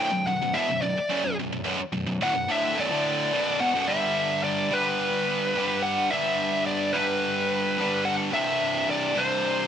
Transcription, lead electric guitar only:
0, 0, Header, 1, 2, 480
1, 0, Start_track
1, 0, Tempo, 556070
1, 1438, Time_signature, 4, 2, 24, 8
1, 8348, End_track
2, 0, Start_track
2, 0, Title_t, "Lead electric guitar"
2, 0, Program_c, 0, 29
2, 0, Note_on_c, 0, 79, 108
2, 229, Note_off_c, 0, 79, 0
2, 232, Note_on_c, 0, 78, 95
2, 465, Note_on_c, 0, 76, 92
2, 482, Note_off_c, 0, 78, 0
2, 704, Note_off_c, 0, 76, 0
2, 708, Note_on_c, 0, 74, 90
2, 1159, Note_off_c, 0, 74, 0
2, 1925, Note_on_c, 0, 78, 104
2, 2168, Note_on_c, 0, 76, 98
2, 2169, Note_off_c, 0, 78, 0
2, 2410, Note_off_c, 0, 76, 0
2, 2414, Note_on_c, 0, 74, 84
2, 3091, Note_off_c, 0, 74, 0
2, 3111, Note_on_c, 0, 78, 89
2, 3347, Note_on_c, 0, 76, 100
2, 3361, Note_off_c, 0, 78, 0
2, 3798, Note_off_c, 0, 76, 0
2, 3832, Note_on_c, 0, 74, 95
2, 4082, Note_off_c, 0, 74, 0
2, 4087, Note_on_c, 0, 71, 85
2, 5028, Note_on_c, 0, 78, 101
2, 5071, Note_off_c, 0, 71, 0
2, 5270, Note_on_c, 0, 76, 103
2, 5280, Note_off_c, 0, 78, 0
2, 5719, Note_off_c, 0, 76, 0
2, 5754, Note_on_c, 0, 74, 89
2, 5979, Note_on_c, 0, 71, 90
2, 6003, Note_off_c, 0, 74, 0
2, 6950, Note_on_c, 0, 78, 106
2, 6977, Note_off_c, 0, 71, 0
2, 7016, Note_off_c, 0, 78, 0
2, 7196, Note_on_c, 0, 76, 109
2, 7682, Note_off_c, 0, 76, 0
2, 7686, Note_on_c, 0, 74, 104
2, 7921, Note_on_c, 0, 72, 104
2, 7928, Note_off_c, 0, 74, 0
2, 8348, Note_off_c, 0, 72, 0
2, 8348, End_track
0, 0, End_of_file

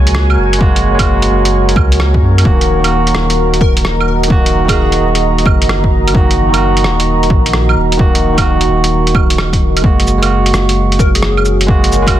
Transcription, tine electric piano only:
0, 0, Header, 1, 2, 480
1, 0, Start_track
1, 0, Key_signature, -6, "minor"
1, 0, Tempo, 461538
1, 634, Time_signature, 4, 2, 24, 8
1, 12685, End_track
2, 0, Start_track
2, 0, Title_t, "Tine electric piano"
2, 0, Program_c, 0, 4
2, 0, Control_c, 0, 64, 127
2, 0, Note_on_c, 0, 56, 73
2, 0, Note_on_c, 0, 58, 69
2, 0, Note_on_c, 0, 66, 81
2, 594, Note_off_c, 0, 56, 0
2, 607, Note_on_c, 0, 56, 91
2, 616, Note_off_c, 0, 58, 0
2, 628, Note_on_c, 0, 58, 86
2, 637, Note_off_c, 0, 66, 0
2, 648, Note_on_c, 0, 66, 105
2, 976, Note_off_c, 0, 56, 0
2, 988, Note_on_c, 0, 56, 79
2, 992, Note_off_c, 0, 58, 0
2, 1002, Note_off_c, 0, 66, 0
2, 1029, Note_on_c, 0, 58, 72
2, 1072, Note_on_c, 0, 66, 84
2, 2513, Note_off_c, 0, 56, 0
2, 2528, Note_on_c, 0, 51, 94
2, 2533, Note_off_c, 0, 58, 0
2, 2548, Note_on_c, 0, 58, 85
2, 2554, Note_off_c, 0, 66, 0
2, 2567, Note_on_c, 0, 66, 100
2, 2570, Control_c, 0, 64, 0
2, 2770, Control_c, 0, 64, 127
2, 2898, Note_off_c, 0, 51, 0
2, 2910, Note_on_c, 0, 51, 69
2, 2912, Note_off_c, 0, 58, 0
2, 2922, Note_off_c, 0, 66, 0
2, 2952, Note_on_c, 0, 58, 67
2, 2992, Note_on_c, 0, 66, 78
2, 4434, Note_off_c, 0, 51, 0
2, 4449, Note_on_c, 0, 51, 92
2, 4455, Note_off_c, 0, 58, 0
2, 4471, Note_on_c, 0, 58, 91
2, 4474, Note_off_c, 0, 66, 0
2, 4493, Note_on_c, 0, 66, 110
2, 4821, Note_off_c, 0, 51, 0
2, 4833, Note_on_c, 0, 51, 81
2, 4834, Note_off_c, 0, 58, 0
2, 4845, Note_off_c, 0, 66, 0
2, 4877, Note_on_c, 0, 58, 72
2, 4917, Note_on_c, 0, 66, 91
2, 6355, Note_off_c, 0, 51, 0
2, 6375, Note_on_c, 0, 51, 93
2, 6377, Note_off_c, 0, 58, 0
2, 6396, Note_on_c, 0, 58, 84
2, 6397, Note_off_c, 0, 66, 0
2, 6416, Note_on_c, 0, 66, 97
2, 6741, Note_off_c, 0, 51, 0
2, 6754, Note_on_c, 0, 51, 76
2, 6756, Note_off_c, 0, 58, 0
2, 6766, Note_off_c, 0, 66, 0
2, 6795, Note_on_c, 0, 58, 68
2, 6837, Note_on_c, 0, 66, 81
2, 8275, Note_off_c, 0, 51, 0
2, 8289, Note_on_c, 0, 51, 93
2, 8296, Note_off_c, 0, 58, 0
2, 8311, Note_on_c, 0, 58, 86
2, 8317, Note_off_c, 0, 66, 0
2, 8330, Note_on_c, 0, 66, 103
2, 8659, Note_off_c, 0, 51, 0
2, 8671, Note_on_c, 0, 51, 78
2, 8674, Note_off_c, 0, 58, 0
2, 8683, Note_off_c, 0, 66, 0
2, 8712, Note_on_c, 0, 58, 70
2, 8754, Note_on_c, 0, 66, 85
2, 10194, Note_off_c, 0, 51, 0
2, 10212, Note_on_c, 0, 56, 89
2, 10214, Note_off_c, 0, 58, 0
2, 10231, Note_on_c, 0, 58, 80
2, 10236, Note_off_c, 0, 66, 0
2, 10247, Control_c, 0, 64, 0
2, 10255, Note_on_c, 0, 66, 96
2, 10424, Control_c, 0, 64, 127
2, 10576, Note_off_c, 0, 56, 0
2, 10588, Note_on_c, 0, 56, 74
2, 10594, Note_off_c, 0, 58, 0
2, 10606, Note_off_c, 0, 66, 0
2, 10630, Note_on_c, 0, 58, 68
2, 10671, Note_on_c, 0, 66, 79
2, 12113, Note_off_c, 0, 56, 0
2, 12133, Note_off_c, 0, 58, 0
2, 12135, Note_on_c, 0, 56, 94
2, 12150, Note_on_c, 0, 58, 90
2, 12154, Note_off_c, 0, 66, 0
2, 12173, Note_on_c, 0, 66, 109
2, 12492, Note_off_c, 0, 56, 0
2, 12504, Note_on_c, 0, 56, 81
2, 12513, Note_off_c, 0, 58, 0
2, 12525, Note_off_c, 0, 66, 0
2, 12547, Note_on_c, 0, 58, 72
2, 12589, Note_on_c, 0, 66, 93
2, 12685, Note_off_c, 0, 56, 0
2, 12685, Note_off_c, 0, 58, 0
2, 12685, Note_off_c, 0, 66, 0
2, 12685, End_track
0, 0, End_of_file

